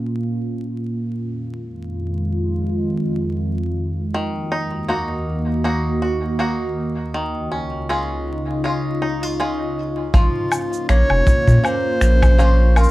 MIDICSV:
0, 0, Header, 1, 6, 480
1, 0, Start_track
1, 0, Tempo, 750000
1, 732, Time_signature, 4, 2, 24, 8
1, 8262, End_track
2, 0, Start_track
2, 0, Title_t, "Clarinet"
2, 0, Program_c, 0, 71
2, 6498, Note_on_c, 0, 65, 92
2, 6949, Note_off_c, 0, 65, 0
2, 6969, Note_on_c, 0, 73, 116
2, 7454, Note_on_c, 0, 72, 113
2, 7464, Note_off_c, 0, 73, 0
2, 8172, Note_on_c, 0, 70, 92
2, 8182, Note_off_c, 0, 72, 0
2, 8262, Note_off_c, 0, 70, 0
2, 8262, End_track
3, 0, Start_track
3, 0, Title_t, "Five-string banjo"
3, 0, Program_c, 1, 105
3, 2652, Note_on_c, 1, 51, 69
3, 2891, Note_on_c, 1, 63, 60
3, 3126, Note_on_c, 1, 58, 54
3, 3130, Note_off_c, 1, 63, 0
3, 3130, Note_on_c, 1, 63, 54
3, 3135, Note_on_c, 1, 66, 57
3, 3604, Note_off_c, 1, 58, 0
3, 3610, Note_off_c, 1, 66, 0
3, 3611, Note_on_c, 1, 58, 53
3, 3613, Note_off_c, 1, 63, 0
3, 3615, Note_on_c, 1, 63, 48
3, 3617, Note_on_c, 1, 66, 59
3, 3846, Note_off_c, 1, 66, 0
3, 3853, Note_on_c, 1, 66, 62
3, 4082, Note_off_c, 1, 58, 0
3, 4088, Note_off_c, 1, 66, 0
3, 4090, Note_on_c, 1, 58, 56
3, 4091, Note_off_c, 1, 63, 0
3, 4094, Note_on_c, 1, 63, 53
3, 4097, Note_on_c, 1, 66, 60
3, 4564, Note_off_c, 1, 51, 0
3, 4571, Note_on_c, 1, 51, 72
3, 4625, Note_off_c, 1, 58, 0
3, 4628, Note_off_c, 1, 66, 0
3, 4807, Note_off_c, 1, 63, 0
3, 4810, Note_on_c, 1, 61, 57
3, 5052, Note_on_c, 1, 56, 55
3, 5053, Note_off_c, 1, 61, 0
3, 5056, Note_on_c, 1, 61, 58
3, 5058, Note_on_c, 1, 65, 60
3, 5522, Note_off_c, 1, 56, 0
3, 5530, Note_on_c, 1, 56, 53
3, 5532, Note_off_c, 1, 61, 0
3, 5535, Note_on_c, 1, 61, 52
3, 5537, Note_off_c, 1, 65, 0
3, 5539, Note_on_c, 1, 65, 58
3, 5769, Note_off_c, 1, 65, 0
3, 5772, Note_on_c, 1, 63, 63
3, 5906, Note_off_c, 1, 63, 0
3, 5906, Note_on_c, 1, 65, 55
3, 6006, Note_off_c, 1, 56, 0
3, 6012, Note_off_c, 1, 65, 0
3, 6013, Note_on_c, 1, 56, 60
3, 6014, Note_off_c, 1, 61, 0
3, 6017, Note_on_c, 1, 61, 58
3, 6020, Note_on_c, 1, 65, 61
3, 6486, Note_off_c, 1, 51, 0
3, 6489, Note_on_c, 1, 53, 91
3, 6546, Note_off_c, 1, 56, 0
3, 6913, Note_off_c, 1, 61, 0
3, 6916, Note_off_c, 1, 65, 0
3, 6971, Note_on_c, 1, 58, 61
3, 7439, Note_off_c, 1, 58, 0
3, 7447, Note_on_c, 1, 58, 65
3, 7918, Note_off_c, 1, 58, 0
3, 7926, Note_on_c, 1, 58, 62
3, 7931, Note_on_c, 1, 61, 67
3, 7934, Note_on_c, 1, 65, 72
3, 8168, Note_off_c, 1, 65, 0
3, 8171, Note_on_c, 1, 65, 68
3, 8262, Note_off_c, 1, 53, 0
3, 8262, Note_off_c, 1, 58, 0
3, 8262, Note_off_c, 1, 61, 0
3, 8262, Note_off_c, 1, 65, 0
3, 8262, End_track
4, 0, Start_track
4, 0, Title_t, "Ambient pad"
4, 0, Program_c, 2, 92
4, 0, Note_on_c, 2, 46, 77
4, 0, Note_on_c, 2, 58, 60
4, 0, Note_on_c, 2, 61, 62
4, 0, Note_on_c, 2, 65, 74
4, 714, Note_off_c, 2, 61, 0
4, 715, Note_off_c, 2, 58, 0
4, 715, Note_off_c, 2, 65, 0
4, 716, Note_off_c, 2, 46, 0
4, 731, Note_on_c, 2, 41, 74
4, 734, Note_on_c, 2, 51, 64
4, 736, Note_on_c, 2, 56, 69
4, 738, Note_on_c, 2, 65, 77
4, 2632, Note_off_c, 2, 41, 0
4, 2634, Note_off_c, 2, 51, 0
4, 2635, Note_off_c, 2, 56, 0
4, 2636, Note_off_c, 2, 65, 0
4, 2648, Note_on_c, 2, 58, 66
4, 2651, Note_on_c, 2, 66, 83
4, 2652, Note_on_c, 2, 39, 76
4, 2654, Note_on_c, 2, 51, 66
4, 4551, Note_off_c, 2, 58, 0
4, 4552, Note_off_c, 2, 66, 0
4, 4553, Note_off_c, 2, 39, 0
4, 4554, Note_off_c, 2, 51, 0
4, 4577, Note_on_c, 2, 49, 68
4, 4577, Note_on_c, 2, 65, 82
4, 4578, Note_on_c, 2, 63, 67
4, 4581, Note_on_c, 2, 37, 73
4, 6475, Note_off_c, 2, 49, 0
4, 6475, Note_off_c, 2, 65, 0
4, 6476, Note_off_c, 2, 63, 0
4, 6477, Note_off_c, 2, 37, 0
4, 6491, Note_on_c, 2, 65, 87
4, 6492, Note_on_c, 2, 61, 71
4, 6493, Note_on_c, 2, 58, 78
4, 8262, Note_off_c, 2, 58, 0
4, 8262, Note_off_c, 2, 61, 0
4, 8262, Note_off_c, 2, 65, 0
4, 8262, End_track
5, 0, Start_track
5, 0, Title_t, "Sub bass"
5, 0, Program_c, 3, 38
5, 6489, Note_on_c, 3, 34, 97
5, 6579, Note_off_c, 3, 34, 0
5, 6971, Note_on_c, 3, 34, 78
5, 7060, Note_off_c, 3, 34, 0
5, 7104, Note_on_c, 3, 29, 100
5, 7175, Note_off_c, 3, 29, 0
5, 7345, Note_on_c, 3, 46, 89
5, 7415, Note_off_c, 3, 46, 0
5, 7688, Note_on_c, 3, 34, 81
5, 8232, Note_off_c, 3, 34, 0
5, 8262, End_track
6, 0, Start_track
6, 0, Title_t, "Drums"
6, 6489, Note_on_c, 9, 36, 104
6, 6492, Note_on_c, 9, 69, 30
6, 6553, Note_off_c, 9, 36, 0
6, 6556, Note_off_c, 9, 69, 0
6, 6730, Note_on_c, 9, 77, 81
6, 6733, Note_on_c, 9, 69, 78
6, 6794, Note_off_c, 9, 77, 0
6, 6797, Note_off_c, 9, 69, 0
6, 6868, Note_on_c, 9, 69, 43
6, 6932, Note_off_c, 9, 69, 0
6, 6969, Note_on_c, 9, 26, 79
6, 6972, Note_on_c, 9, 69, 32
6, 7033, Note_off_c, 9, 26, 0
6, 7036, Note_off_c, 9, 69, 0
6, 7103, Note_on_c, 9, 77, 77
6, 7167, Note_off_c, 9, 77, 0
6, 7211, Note_on_c, 9, 36, 104
6, 7214, Note_on_c, 9, 69, 79
6, 7275, Note_off_c, 9, 36, 0
6, 7278, Note_off_c, 9, 69, 0
6, 7344, Note_on_c, 9, 36, 59
6, 7349, Note_on_c, 9, 69, 46
6, 7408, Note_off_c, 9, 36, 0
6, 7413, Note_off_c, 9, 69, 0
6, 7454, Note_on_c, 9, 77, 81
6, 7457, Note_on_c, 9, 69, 31
6, 7518, Note_off_c, 9, 77, 0
6, 7521, Note_off_c, 9, 69, 0
6, 7689, Note_on_c, 9, 26, 88
6, 7692, Note_on_c, 9, 69, 83
6, 7753, Note_off_c, 9, 26, 0
6, 7756, Note_off_c, 9, 69, 0
6, 7824, Note_on_c, 9, 77, 78
6, 7826, Note_on_c, 9, 36, 103
6, 7827, Note_on_c, 9, 69, 41
6, 7888, Note_off_c, 9, 77, 0
6, 7890, Note_off_c, 9, 36, 0
6, 7891, Note_off_c, 9, 69, 0
6, 7933, Note_on_c, 9, 69, 35
6, 7997, Note_off_c, 9, 69, 0
6, 8168, Note_on_c, 9, 77, 81
6, 8171, Note_on_c, 9, 69, 37
6, 8214, Note_off_c, 9, 69, 0
6, 8214, Note_on_c, 9, 69, 41
6, 8232, Note_off_c, 9, 77, 0
6, 8262, Note_off_c, 9, 69, 0
6, 8262, End_track
0, 0, End_of_file